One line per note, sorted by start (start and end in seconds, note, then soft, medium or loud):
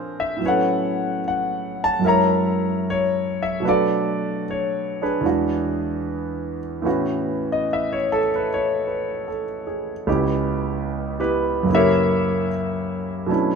0.00 0.38 A#2 soft
0.00 0.39 F3 soft
0.00 0.41 C4 soft
0.00 0.42 D4 soft
0.00 0.38 F4 soft
0.00 0.44 G#4 medium
0.00 0.42 A#4 medium
0.00 0.19 C5 medium
0.20 0.43 E5 medium
0.37 2.00 A2 soft
0.37 2.00 F#3 soft
0.42 2.02 B3 soft
0.42 2.04 C#4 soft
0.42 2.00 C#5 medium
0.46 2.06 A4 soft
0.46 2.01 B4 medium
0.46 1.21 F#5 medium
1.28 1.81 F#5 medium
1.84 2.06 A5 medium
1.99 3.62 F#2 soft
1.99 3.60 F#3 soft
1.99 3.63 G#3 soft
2.04 3.64 E4 soft
2.04 3.64 A#4 soft
2.04 2.89 C#5 medium
2.04 3.41 E5 medium
2.08 2.88 A#5 medium
2.90 3.43 C#5 medium
3.42 3.64 E5 medium
3.60 5.23 B2 soft
3.60 5.24 F#3 soft
3.60 5.24 A3 soft
3.64 5.00 D4 soft
3.64 5.22 F#4 medium
3.64 5.23 A4 medium
3.64 5.01 B4 soft
3.69 4.42 D5 medium
4.51 5.04 C#5 medium
5.02 5.24 D4 soft
5.02 6.58 G#4 soft
5.02 6.58 B4 medium
5.21 6.84 E2 soft
5.21 6.82 E3 soft
5.21 6.85 G#3 soft
5.25 6.86 D4 soft
5.25 6.85 F#4 medium
6.82 10.06 A2 medium
6.82 10.06 E3 soft
6.82 10.06 B3 soft
6.82 10.07 C#4 soft
6.86 10.08 F#4 medium
7.52 7.65 D#5 medium
7.73 7.96 E5 medium
7.93 8.20 C#5 medium
8.12 8.29 A4 medium
8.36 8.47 B4 medium
8.54 9.27 C#5 medium
8.87 9.43 B4 soft
9.28 9.91 A4 soft
9.67 10.23 G#4 soft
10.07 11.68 C#2 medium
10.07 11.65 C#3 medium
10.07 11.20 B3 soft
10.07 11.19 E4 medium
10.07 11.18 G4 medium
11.20 11.68 B3 medium
11.20 11.68 E4 soft
11.20 11.67 G4 medium
11.20 11.68 B4 medium
11.63 13.26 F#2 medium
11.63 13.28 C#3 soft
11.69 13.29 A#3 soft
11.69 11.73 E4 soft
11.75 12.48 E4 medium
11.75 13.32 G4 medium
11.75 12.48 A#4 medium
11.75 12.48 C#5 medium
11.75 12.48 E5 medium
13.26 13.55 B2 soft
13.26 13.55 F#3 soft
13.26 13.55 A3 soft
13.26 13.55 C#4 soft
13.30 13.55 D4 soft
13.30 13.55 E4 medium